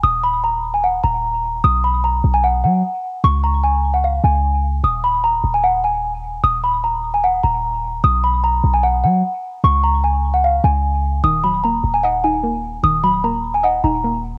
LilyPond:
<<
  \new Staff \with { instrumentName = "Celesta" } { \time 4/4 \key ees \minor \tempo 4 = 150 ees'''8 ces'''8 bes''8. aes''16 ges''8 bes''4. | ees'''8 b''8 bes''8. aes''16 fis''8 fis''4. | des'''8 bes''8 aes''8. ges''16 f''8 aes''4. | ees'''8 ces'''8 bes''8. aes''16 ges''8 aes''4. |
ees'''8 ces'''8 bes''8. aes''16 ges''8 bes''4. | ees'''8 b''8 bes''8. aes''16 fis''8 fis''4. | des'''8 bes''8 aes''8. ges''16 f''8 aes''4. | ees'''8 ces'''8 bes''8. aes''16 ges''8 aes''4. |
ees'''8 ces'''8 bes''8. aes''16 ges''8 bes''4. | }
  \new Staff \with { instrumentName = "Synth pluck" } { \time 4/4 \key ees \minor r1 | r1 | r1 | r1 |
r1 | r1 | r1 | ees8 ges8 bes4 ees''8 ees'8 bes4 |
ees8 ges8 bes4 ees''8 ees'8 bes4 | }
  \new Staff \with { instrumentName = "808-style bass" } { \clef bass \time 4/4 \key ees \minor ees,,2~ ees,,8 ees,,4. | b,,4. b,,4 fis8 r4 | des,2~ des,8 des,4. | ees,,4. ees,,2~ ees,,8 |
ees,,2~ ees,,8 ees,,4. | b,,4. b,,4 fis8 r4 | des,2~ des,8 des,4. | ees,,4. ees,,2~ ees,,8 |
ees,,2~ ees,,8 ees,,4. | }
>>